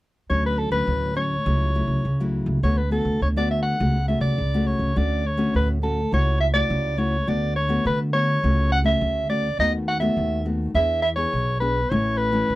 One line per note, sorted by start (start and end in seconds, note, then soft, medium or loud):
0.30 0.67 D2 medium
0.30 0.85 D3 medium
0.30 0.69 F#3 medium
0.30 0.69 A3 medium
0.30 0.69 C#4 medium
0.30 0.43 C#5 medium
0.46 0.60 B4 medium
0.58 0.71 A4 medium
0.71 0.84 D2 medium
0.71 1.11 F#3 medium
0.71 1.12 A3 medium
0.71 1.12 C#4 medium
0.71 1.13 B4 medium
0.87 1.37 D2 medium
0.87 1.43 A2 soft
1.15 1.35 F#3 soft
1.15 1.35 A3 soft
1.15 1.35 C#4 soft
1.15 2.29 C#5 medium
1.46 1.83 C#2 medium
1.46 2.02 C#3 medium
1.46 1.71 F#3 medium
1.46 1.71 A3 soft
1.46 1.71 E4 medium
1.75 2.02 F#3 soft
1.75 2.03 A3 medium
1.75 2.03 E4 medium
1.88 2.01 C#2 medium
2.05 2.42 C#2 medium
2.05 2.60 C#3 medium
2.20 2.59 F#3 medium
2.20 2.59 A3 medium
2.20 2.59 E4 medium
2.46 2.59 C#2 medium
2.63 3.00 D2 medium
2.63 3.19 D3 medium
2.63 2.80 A3 medium
2.63 2.81 B3 medium
2.63 2.81 F#4 medium
2.63 2.79 C#5 medium
2.78 2.92 B4 medium
2.91 3.19 A3 soft
2.91 3.19 B3 medium
2.91 3.19 F#4 medium
2.91 3.19 A4 medium
3.05 3.18 D2 medium
3.21 3.71 D2 medium
3.21 3.77 D3 medium
3.21 3.29 C#5 medium
3.36 3.75 A3 medium
3.36 3.75 B3 medium
3.36 3.75 F#4 medium
3.36 3.50 D5 medium
3.51 3.62 E5 medium
3.63 4.04 F#5 medium
3.80 4.17 C#2 loud
3.80 4.35 C#3 medium
3.80 3.97 A3 soft
3.80 3.97 C#4 medium
3.80 3.97 F#4 medium
4.08 4.35 A3 medium
4.08 4.36 C#4 medium
4.08 4.36 F#4 medium
4.08 4.21 E5 medium
4.21 4.34 C#2 medium
4.21 4.68 D5 medium
4.38 4.75 C#2 medium
4.38 4.93 C#3 soft
4.54 4.92 A3 medium
4.54 4.92 C#4 medium
4.54 4.92 F#4 medium
4.67 4.99 C#5 medium
4.79 4.92 C#2 medium
4.96 5.45 D2 medium
4.96 5.51 D3 medium
4.96 5.23 A3 medium
4.96 5.23 C#4 medium
4.96 5.23 F#4 medium
4.96 5.28 D5 medium
5.26 5.54 C#5 medium
5.37 5.77 A3 medium
5.37 5.77 C#4 medium
5.37 5.78 F#4 medium
5.54 6.03 D2 medium
5.54 6.09 A2 medium
5.54 5.69 B4 medium
5.82 5.99 A3 soft
5.82 6.00 C#4 soft
5.82 6.00 F#4 medium
5.82 6.10 A4 medium
6.12 6.61 C#2 medium
6.12 6.67 C#3 medium
6.12 6.51 A3 medium
6.12 6.51 E4 medium
6.12 6.52 F#4 medium
6.12 6.40 C#5 medium
6.41 6.47 E5 medium
6.54 6.93 A3 medium
6.54 6.93 E4 soft
6.54 6.94 F#4 medium
6.54 7.00 D5 medium
6.70 7.19 C#2 medium
6.70 7.25 C#3 medium
6.98 7.15 A3 medium
6.98 7.16 E4 medium
6.98 7.16 F#4 medium
6.98 7.30 C#5 medium
7.27 7.77 D2 medium
7.27 7.83 D3 medium
7.27 7.55 A3 medium
7.27 7.55 B3 medium
7.27 7.55 F#4 medium
7.27 7.56 D5 loud
7.56 7.83 C#5 medium
7.69 8.09 A3 medium
7.69 8.09 B3 medium
7.69 8.09 F#4 medium
7.85 8.35 D3 medium
7.85 8.41 D3 medium
7.85 7.99 B4 medium
8.13 8.38 A3 medium
8.13 8.39 B3 soft
8.13 8.39 F#4 medium
8.13 8.68 C#5 loud
8.43 8.93 C#2 medium
8.43 8.99 C#3 medium
8.43 8.82 A3 medium
8.43 8.83 C#4 soft
8.43 8.83 F#4 medium
8.72 8.79 F#5 loud
8.84 9.24 A3 medium
8.84 9.25 C#4 medium
8.84 9.25 F#4 medium
8.84 9.27 E5 medium
9.01 9.51 D2 medium
9.01 9.56 C#3 medium
9.29 9.47 A3 soft
9.29 9.47 C#4 soft
9.29 9.47 F#4 medium
9.29 9.57 D5 medium
9.59 10.08 D#2 medium
9.59 10.15 D#3 medium
9.59 9.99 A3 medium
9.59 9.99 B3 medium
9.59 9.99 F#4 medium
9.59 9.73 D#5 loud
9.88 10.00 F#5 medium
10.00 10.41 A3 medium
10.00 10.41 B3 medium
10.00 10.41 F#4 medium
10.00 10.42 E5 medium
10.17 10.66 D#2 medium
10.17 10.73 D#3 medium
10.45 10.70 A3 soft
10.45 10.70 B3 soft
10.45 10.71 F#4 medium
10.74 11.24 E2 medium
10.74 11.31 E3 medium
10.74 11.03 B3 medium
10.74 11.03 D4 medium
10.74 11.03 G#4 medium
10.74 11.01 E5 loud
11.02 11.09 E5 loud
11.16 11.57 B3 medium
11.16 11.57 D4 soft
11.16 11.57 G#4 medium
11.16 11.58 C#5 medium
11.33 11.83 B1 medium
11.33 11.89 B2 medium
11.60 11.79 B3 soft
11.60 11.79 D4 soft
11.60 11.79 G#4 medium
11.60 11.92 B4 medium
11.90 12.41 A1 medium
11.90 12.47 A2 medium
11.90 12.30 E3 medium
11.90 12.31 A3 medium
11.90 12.31 C#4 medium
11.90 12.19 C#5 loud
12.17 12.55 B4 loud
12.32 12.49 E3 medium
12.32 12.55 A3 medium
12.32 12.55 C#4 medium
12.50 12.55 A2 medium
12.50 12.55 E3 medium